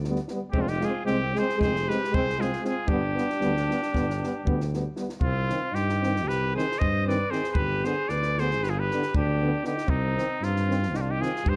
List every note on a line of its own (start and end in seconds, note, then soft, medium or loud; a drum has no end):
0.00 0.20 D2 medium
0.04 snare soft
0.09 0.18 G3 medium
0.09 0.18 B3 medium
0.16 snare soft
0.28 0.41 G3 medium
0.28 0.40 B3 medium
0.28 snare soft
0.51 0.83 F1 loud
0.51 0.64 G#3 medium
0.51 0.60 C4 loud
0.51 0.66 C4 medium
0.51 0.63 G4 medium
0.51 kick medium
0.59 0.69 D4 medium
0.59 0.71 F4 medium
0.67 0.82 D#4 medium
0.67 0.87 G4 loud
0.67 snare soft
0.81 0.91 G#3 medium
0.81 1.04 F4 medium
0.81 snare soft
0.85 0.94 C4 medium
0.85 1.05 G#4 medium
1.04 1.36 C2 medium
1.04 1.18 G#3 medium
1.04 1.35 C4 medium
1.04 1.19 C4 medium
1.04 1.40 G4 loud
1.04 snare soft
1.34 1.45 G#3 medium
1.34 1.57 G#4 medium
1.34 snare soft
1.38 1.47 C4 medium
1.38 1.61 C5 loud
1.49 snare soft
1.57 1.89 F1 medium
1.57 1.70 G#3 medium
1.57 1.89 G#4 loud
1.57 kick medium
1.61 1.74 C4 medium
1.61 1.91 C5 loud
1.61 snare soft
1.76 snare soft
1.87 1.98 G#3 medium
1.87 2.00 C4 medium
1.87 2.17 G4 medium
1.87 2.16 B4 medium
1.87 snare soft
2.04 snare soft
2.10 2.54 C2 medium
2.10 2.22 G#3 medium
2.10 2.25 C4 medium
2.14 2.40 G#4 medium
2.14 2.43 C5 loud
2.14 kick medium
2.29 snare soft
2.37 2.47 G#3 medium
2.37 2.64 F4 medium
2.41 2.50 C4 medium
2.41 2.65 G#4 medium
2.41 snare soft
2.53 snare soft
2.60 2.70 G#3 medium
2.64 2.75 C4 medium
2.64 2.89 F4 medium
2.64 2.90 G#4 medium
2.64 snare soft
2.87 3.17 G1 medium
2.87 2.99 G3 medium
2.87 3.00 B3 medium
2.87 4.74 D4 medium
2.87 4.75 G4 medium
2.87 kick medium
3.15 3.25 G3 soft
3.15 3.25 B3 medium
3.15 snare soft
3.30 snare soft
3.39 3.71 D2 medium
3.39 3.51 G3 medium
3.39 3.53 B3 medium
3.39 snare soft
3.57 snare soft
3.68 3.78 G3 medium
3.68 3.79 B3 medium
3.68 snare soft
3.82 snare soft
3.93 4.23 G1 medium
3.93 4.06 G3 medium
3.93 4.06 B3 medium
3.93 kick medium
3.93 snare soft
4.10 snare soft
4.23 4.33 G3 medium
4.23 4.33 B3 medium
4.23 snare soft
4.45 4.87 D2 medium
4.45 4.56 G3 medium
4.45 4.57 B3 medium
4.45 kick medium
4.60 snare soft
4.73 4.84 G3 medium
4.73 4.83 B3 soft
4.73 snare soft
4.96 5.07 G3 soft
4.96 5.07 B3 medium
4.96 snare soft
5.09 snare soft
5.21 5.50 C2 loud
5.21 5.73 C4 medium
5.21 5.76 F4 loud
5.21 kick medium
5.49 5.60 D#3 medium
5.49 5.59 C4 soft
5.49 snare soft
5.71 6.29 G2 medium
5.71 6.26 D#4 medium
5.71 6.30 G4 medium
5.71 snare soft
5.89 snare soft
6.02 6.14 D#3 soft
6.02 6.12 C4 medium
6.02 snare soft
6.16 snare soft
6.25 6.56 C2 medium
6.25 6.54 G4 medium
6.25 6.56 B4 medium
6.29 snare soft
6.54 6.66 D#3 medium
6.54 6.65 C4 medium
6.54 6.81 G#4 medium
6.54 6.80 C5 loud
6.58 snare soft
6.72 snare soft
6.79 7.22 G2 medium
6.79 7.07 C5 medium
6.79 7.06 D#5 loud
6.79 kick medium
7.07 7.18 D#3 medium
7.07 7.17 C4 medium
7.07 7.33 B4 loud
7.07 7.32 D5 medium
7.07 snare soft
7.30 7.41 D#3 medium
7.30 7.40 C4 medium
7.30 7.50 G#4 medium
7.30 7.52 C5 medium
7.30 snare soft
7.44 snare soft
7.50 7.59 G#4 medium
7.50 7.86 B4 loud
7.50 7.55 C5 medium
7.55 7.84 G1 medium
7.55 7.88 G4 loud
7.55 kick medium
7.84 7.95 D3 medium
7.84 7.93 B3 medium
7.84 8.12 G#4 medium
7.84 8.10 C5 medium
7.84 snare soft
8.09 8.62 D2 medium
8.09 8.42 B4 medium
8.09 8.41 D5 loud
8.09 snare soft
8.22 snare soft
8.38 8.48 D3 soft
8.38 8.48 B3 medium
8.38 8.65 G#4 medium
8.38 8.65 C5 loud
8.38 snare soft
8.51 snare soft
8.61 8.90 G1 loud
8.61 8.71 G4 medium
8.61 8.71 B4 medium
8.61 snare soft
8.69 8.81 F4 medium
8.69 8.81 G#4 medium
8.79 9.14 G4 medium
8.79 9.15 B4 loud
8.91 9.02 D3 medium
8.91 9.00 B3 medium
8.91 snare soft
9.02 snare soft
9.14 9.55 D2 loud
9.14 9.61 D4 medium
9.14 9.62 G4 medium
9.14 kick medium
9.42 9.51 D3 medium
9.42 9.51 B3 medium
9.63 9.75 D3 medium
9.63 9.72 B3 medium
9.63 9.88 D#4 medium
9.63 9.91 G4 medium
9.63 snare soft
9.78 snare soft
9.87 10.17 C2 loud
9.87 10.41 C4 medium
9.87 10.46 D#4 loud
9.87 kick medium
10.15 10.27 D#3 medium
10.15 10.25 C4 medium
10.15 snare soft
10.41 10.95 G2 loud
10.41 10.95 C4 medium
10.41 10.97 F4 medium
10.41 snare soft
10.56 snare soft
10.68 10.78 D#3 medium
10.68 10.78 C4 medium
10.68 snare soft
10.83 snare soft
10.93 11.22 C2 medium
10.93 11.10 D4 medium
10.93 10.98 D#4 medium
10.93 11.02 G4 medium
10.93 snare soft
11.01 11.12 F4 medium
11.09 11.22 D#4 medium
11.09 11.23 G4 loud
11.20 11.31 D#3 medium
11.20 11.30 C4 medium
11.20 11.46 F4 medium
11.20 11.50 G#4 medium
11.20 snare soft
11.36 snare soft
11.45 11.56 G2 loud
11.45 11.56 G4 medium
11.45 kick medium
11.49 11.56 C5 loud